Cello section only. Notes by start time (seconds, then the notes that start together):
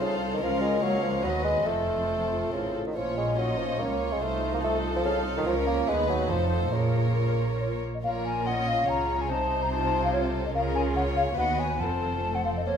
Already playing: C2
0.42 C#2
1.24 D#2
1.66 F2
2.53 A2
2.96 A#2
3.80 C#2
4.22 C2
5.46 C#2
5.88 D#2
6.30 F2
6.72 A#2
8.03 A#2
8.87 C#3
9.29 C3
10.54 C#3
11.37 D#2
11.80 F2